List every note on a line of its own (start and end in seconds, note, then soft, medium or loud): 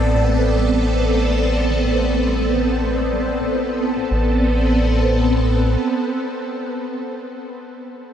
0.00 4.08 A1 medium
0.00 0.08 D3 medium
0.00 4.07 B3 medium
0.00 4.07 C4 medium
0.00 4.07 A4 medium
0.00 4.12 D5 medium
0.15 0.22 A2 medium
0.29 0.36 A3 medium
0.43 0.48 A3 medium
0.57 0.68 G3 medium
0.72 0.82 G3 medium
0.86 0.93 D3 medium
1.00 1.07 A2 medium
1.14 1.21 A3 medium
1.28 1.32 A3 medium
1.42 1.53 G3 medium
1.56 1.67 G3 medium
1.71 1.78 D3 medium
1.85 1.92 A2 medium
1.99 2.06 A3 medium
2.13 2.17 A3 medium
2.27 2.38 G3 medium
2.41 2.52 G3 medium
2.56 2.63 D3 medium
2.70 2.77 A2 medium
2.84 2.91 A3 medium
2.98 3.02 A3 medium
3.12 3.23 G3 medium
3.27 3.31 G3 medium
3.41 3.48 A2 medium
3.55 3.66 E4 medium
3.69 3.80 E4 medium
3.83 3.90 E4 medium
3.97 4.04 A2 medium
4.11 5.77 A1 medium
4.11 4.37 A2 medium
4.11 7.13 B3 medium
4.11 7.13 C4 medium
4.11 7.13 A4 medium